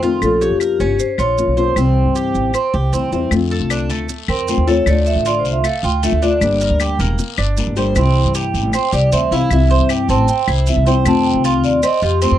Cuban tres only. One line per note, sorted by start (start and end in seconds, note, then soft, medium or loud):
0.03 0.40 F4 medium
0.41 0.60 C#5 medium
0.61 0.79 A#4 medium
0.80 1.18 C#4 medium
1.19 1.56 F4 medium
1.57 1.76 C5 medium
1.77 2.14 C4 medium
2.15 2.53 G4 medium
2.54 2.73 C4 medium
2.74 2.92 G4 medium
2.93 3.11 C4 medium
3.12 3.31 C4 medium
3.51 3.70 A4 medium
3.70 3.89 D4 medium
3.90 4.28 A3 medium
4.29 4.66 C4 medium
4.67 4.86 A4 medium
4.87 5.24 A3 medium
5.26 5.63 F4 medium
5.64 5.83 A3 medium
5.84 6.02 F4 medium
6.03 6.22 A3 medium
6.22 6.60 D4 medium
6.61 6.80 A#4 medium
6.80 6.99 G4 medium
7.00 7.37 A#3 medium
7.38 7.76 D4 medium
7.77 7.96 C5 medium
7.96 8.34 C4 medium
8.35 8.72 G4 medium
8.74 8.92 C4 medium
8.93 9.12 G4 medium
9.12 9.31 C4 medium
9.32 9.70 E4 medium
9.71 9.89 C5 medium
9.90 10.09 G4 medium
10.10 10.47 C4 medium
10.48 10.86 E4 medium
10.86 11.05 C5 medium
11.06 11.43 C4 medium
11.45 11.82 F4 medium
11.83 12.02 C4 medium
12.03 12.21 F4 medium
12.22 12.38 C4 medium